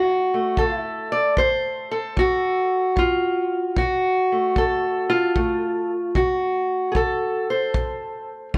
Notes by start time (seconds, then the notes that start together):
Already playing: D3 A3 F#4
0.34 A3
0.57 D3 A4, kick
0.65 F4
0.76 E4
1.12 D5
1.37 D3 C5, kick
1.91 A4
2.16 D3 F#4, kick
2.96 D3 F4, kick
3.76 D3 F#4, kick
4.32 A3
4.56 D3 A4, kick
5.10 F4
5.36 D3 A3, kick
6.15 D3 F#4, kick
6.92 D3 G#4, kick
6.96 A4
7.50 C5
7.74 D3, kick
8.54 G3, kick